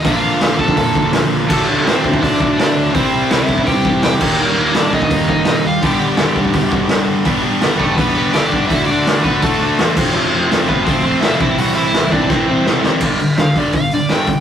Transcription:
<<
  \new Staff \with { instrumentName = "Overdriven electric guitar" } { \time 4/4 \key c \lydian \tempo 4 = 167 <f' f''>4. <a' a''>4. r4 | <a a'>4 <c' c''>4 <d' d''>4 <d' d''>4 | <c' c''>4 <e' e''>4 <g' g''>4 <g' g''>4 | <bes bes'>4 <d' d''>8 <ees' ees''>4 <ees' ees''>4 <f' f''>8 |
<g' g''>2. r4 | r4. <a a'>8 <b b'>4 <d' d''>4 | <e' e''>8 <d' d''>4 <b b'>8 <a a'>4 r4 | r4. <b b'>8 <c' c''>4 <e' e''>8 <e' e''>8 |
<fis' fis''>8 <e' e''>4 <d' d''>8 <c' c''>4 r4 | \key c \major r4 f''8 d''8 f''8 d''8 g''4 | }
  \new Staff \with { instrumentName = "Distorted electric guitar" } { \time 4/4 \key c \lydian <bes, d f bes d'>1 | <d fis a d'>1 | <c g c' e'>2.~ <c g c' e'>8 <ees g bes ees'>8~ | <ees g bes ees'>2.~ <ees g bes ees'>8 r8 |
<g, d g b d'>1 | <g b d' g'>8 <g b d' g'>8 <g b d' g'>8 <g b d' g'>8 <g b d' g'>8 <g b d' g'>8 <g b d' g'>8 <g b d' g'>8 | <d a d' fis'>8 <d a d' fis'>8 <d a d' fis'>8 <d a d' fis'>8 <d a d' fis'>8 <d a d' fis'>8 <d a d' fis'>8 <f a c' f'>8 | <f a c' f'>8 <f a c' f'>8 <f a c' f'>8 <f a c' f'>8 <f a c' f'>8 <f a c' f'>8 <f a c' f'>8 <c e g c' e'>8 |
<c e g c' e'>8 <c e g c' e'>8 <c e g c' e'>8 <c e g c' e'>8 <c e g c' e'>8 <c e g c' e'>8 <c e g c' e'>8 <c e g c' e'>8 | \key c \major <g, d g>8 <g, d>8 <g, d>8 <g, d g>8 <g, d>8 <g, d>8 <g, d g>8 <g, d>8 | }
  \new Staff \with { instrumentName = "Picked electric bass" } { \clef bass \time 4/4 \key c \lydian bes,,8 bes,,8 bes,,8 bes,,8 f,8 d,8 d,8 bes,,8 | d,8 d,8 g,8 d,8 d,4 g,8 d,8 | c,8 c,8 c,8 c,8 g,8 e,8 e,8 ees,8 | ees,8 ees,8 g,8 ees,8 ees,4 g,8 ees,8 |
g,,8 g,,8 g,,8 g,,8 d,8 b,,8 b,,8 g,,8 | g,,8 g,,8 g,,8 e,,8 e,8 g,8 g,,8 g,,8 | d,8 d,8 d,8 d,8 a,8 d,8 e,8 f,,8 | f,,8 f,,8 f,,8 d,8 d,8 f,8 f,,8 c,8 |
c,8 c,8 c,8 c,8 g,8 c,8 a,8 g,,8 | \key c \major g,,8 g,,8 d,4 g,,8 g,,8 g,,8 f,8 | }
  \new DrumStaff \with { instrumentName = "Drums" } \drummode { \time 4/4 <hho bd>4 <hho sn>8 bd16 bd16 <hho bd>8 bd8 <hho sn>4 | <cymc bd>4 <hho sn>8 bd16 bd16 <hho bd>8 bd8 <hho sn>4 | <hho bd>4 <hho sn>8 bd16 bd16 <hho bd>8 bd8 <hho sn>8 <cymc bd>8 | r4 <hho sn>8 bd16 bd16 <hho bd>8 bd8 <hho sn>4 |
<hho bd>4 <hho sn>8 bd16 bd16 <hho bd>8 bd8 <hho sn>4 | <hho bd>4 <hho sn>8 bd8 <hho bd>4 <hho sn>8 bd8 | <hho bd>4 <hho sn>8 bd8 <hho bd>4 <hho sn>8 <cymc bd>8 | r4 <hho sn>8 bd8 <hho bd>4 <hho sn>8 bd8 |
hho4 <hho sn>8 bd8 <bd sn>4 sn8 sn8 | <cymc bd>8 hho8 <hho sn>8 <hho bd>8 <hho bd>8 hho8 <hho sn>8 <hho bd>8 | }
>>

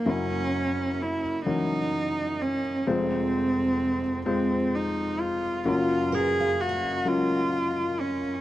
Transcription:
<<
  \new Staff \with { instrumentName = "Steel-string acoustic guitar" } { \time 6/8 \key ges \lydian \tempo 4. = 43 r2. | r2. | r8 bes'16 f''16 ees''2 | }
  \new Staff \with { instrumentName = "Cello" } { \time 6/8 \key ges \lydian des'4 fes'8 ees'4 des'8 | c'4. c'8 ees'8 f'8 | f'8 aes'8 ges'8 f'4 des'8 | }
  \new Staff \with { instrumentName = "Felt piano" } { \time 6/8 \key ges \lydian <ges des' fes' bes'>4 r8 <fes ges des' bes'>4 r8 | <aes c' f' c''>4 r8 <aes c' f' c''>4 r8 | <ges des' f' bes'>4 r8 <ges des' f' bes'>4 r8 | }
  \new Staff \with { instrumentName = "Felt piano" } { \clef bass \time 6/8 \key ges \lydian <ges,, ges,>2. | <f,, f,>2. | <ges,, ges,>2. | }
>>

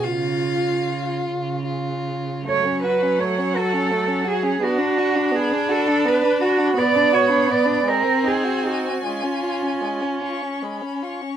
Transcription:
<<
  \new Staff \with { instrumentName = "Violin" } { \time 6/8 \key fis \minor \tempo 4. = 53 eis''4. r4. | fis''2. | b''2.~ | b''4. gis''4.~ |
gis''4. cis'''8 b''8 cis'''8 | }
  \new Staff \with { instrumentName = "Cello" } { \time 6/8 \key fis \minor cis4. cis4. | cis''8 b'8 cis''8 a'4 gis'8 | fis'4 gis'8 a'8 b'8 fis'8 | d''8 cis''8 d''8 ais'8 gis'8 fis'8 |
eis'4. r4. | }
  \new Staff \with { instrumentName = "Violin" } { \time 6/8 \key fis \minor r8 eis'4. eis'4 | a16 cis'16 fis'16 cis'16 a16 cis'16 fis'16 cis'16 a16 cis'16 fis'16 cis'16 | b16 d'16 fis'16 d'16 b16 d'16 fis'16 d'16 b16 d'16 fis'16 d'16 | b16 d'16 fis'16 d'16 b16 d'16 gis16 bis16 dis'16 fis'16 dis'16 bis16 |
gis16 cis'16 eis'16 cis'16 gis16 cis'16 eis'16 cis'16 gis16 cis'16 eis'16 cis'16 | }
  \new Staff \with { instrumentName = "Viola" } { \time 6/8 \key fis \minor eis'4. r4. | fis2. | d'2. | b4. bis4. |
cis'2~ cis'8. r16 | }
>>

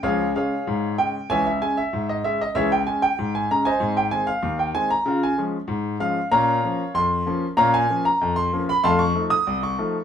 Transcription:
<<
  \new Staff \with { instrumentName = "Grand piano" } { \time 2/4 \key des \lydian \tempo 4 = 95 <aes' des'' f''>8 <aes' des'' f''>4 g''8 | <des'' fes'' aes''>16 fes''16 aes''16 fes''8 ees''16 fes''16 ees''16 | <aes' des'' fes''>16 g''16 aes''16 g''8 aes''16 bes''16 <c'' ees'' aes''>16~ | <c'' ees'' aes''>16 g''16 aes''16 f''8 g''16 aes''16 bes''16~ |
bes''16 aes''16 r4 f''8 | \key bes \minor <des'' f'' bes''>4 c'''4 | <des'' f'' bes''>16 aes''8 bes''8 c'''8 ces'''16 | <f'' a'' c'''>16 des'''8 ees'''8 des'''8. | }
  \new Staff \with { instrumentName = "Grand piano" } { \clef bass \time 2/4 \key des \lydian <des, f>8 <des aes des'>8 aes,8 <des aes des'>8 | <des, fes>8 <des aes des'>8 aes,8 <des aes des'>8 | <des, fes>8 <des aes des'>8 aes,8 <des aes des'>8 | <aes, c'>8 <ees aes c'>8 ees,8 <ees aes c'>8 |
<des f'>8 <f aes des'>8 aes,8 <f aes des'>8 | \key bes \minor <bes, des'>8 <f bes des'>8 f,8 <f bes des'>8 | <bes, des'>8 <f bes des'>8 f,8 <f bes des'>8 | <f, a>8 <f a ees'>8 c,8 <f a ees'>8 | }
>>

